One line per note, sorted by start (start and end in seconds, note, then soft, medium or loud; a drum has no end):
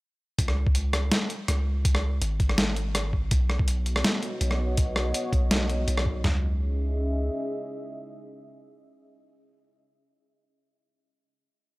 0.39 1.10 C#2 medium
0.39 kick loud
0.39 closed hi-hat medium
0.48 cross-stick medium
0.67 kick loud
0.75 closed hi-hat medium
0.93 cross-stick medium
0.93 closed hi-hat soft
1.12 snare loud
1.12 closed hi-hat medium
1.30 closed hi-hat soft
1.48 2.20 C#2 loud
1.48 cross-stick medium
1.48 closed hi-hat medium
1.85 kick loud
1.85 closed hi-hat medium
1.95 cross-stick medium
2.22 3.30 G#1 loud
2.22 closed hi-hat medium
2.40 kick loud
2.40 closed hi-hat soft
2.49 cross-stick medium
2.58 snare loud
2.58 closed hi-hat medium
2.76 closed hi-hat soft
2.95 cross-stick medium
2.95 closed hi-hat medium
3.13 kick medium
3.31 4.03 B1 medium
3.31 6.24 B3 medium
3.31 kick loud
3.31 closed hi-hat medium
3.50 6.24 F#4 medium
3.50 cross-stick medium
3.58 6.24 D#5 medium
3.58 kick loud
3.67 6.24 C#5 medium
3.67 closed hi-hat medium
3.86 closed hi-hat soft
3.96 cross-stick medium
4.04 snare loud
4.04 closed hi-hat medium
4.23 closed hi-hat soft
4.41 5.13 B1 loud
4.41 closed hi-hat medium
4.51 cross-stick medium
4.77 kick loud
4.77 closed hi-hat medium
4.96 cross-stick medium
5.14 closed hi-hat medium
5.33 5.86 B1 loud
5.33 kick loud
5.33 closed hi-hat soft
5.51 cross-stick medium
5.51 snare loud
5.51 closed hi-hat medium
5.69 closed hi-hat soft
5.88 6.23 B1 medium
5.88 closed hi-hat medium
5.98 cross-stick medium
6.06 kick medium
6.24 7.30 C#2 loud
6.24 9.44 C#4 medium
6.24 snare loud
6.24 floor tom loud
6.30 9.49 G#4 medium
6.35 9.55 D#5 medium
6.40 9.60 E5 medium